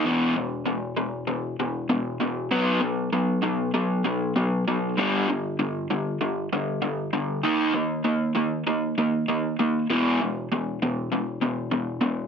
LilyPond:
\new Staff \with { instrumentName = "Overdriven electric guitar" } { \clef bass \time 4/4 \key b \minor \tempo 4 = 98 <e, b, e>8 <e, b,>8 <e, b,>8 <e, b,>8 <e, b,>8 <e, b,>8 <e, b,>8 <e, b,>8 | <b, fis b>8 <b, fis>8 <b, fis>8 <b, fis>8 <b, fis>8 <b, fis>8 <b, fis>8 <b, fis>8 | <g, d g>8 <g, d>8 <g, d>8 <g, d>8 <g, d>8 <g, d>8 <g, d>8 <g, d>8 | <dis ais dis'>8 <dis ais>8 <dis ais>8 <dis ais>8 <dis ais>8 <dis ais>8 <dis ais>8 <dis ais>8 |
<e, b, e>8 <e, b,>8 <e, b,>8 <e, b,>8 <e, b,>8 <e, b,>8 <e, b,>8 <e, b,>8 | }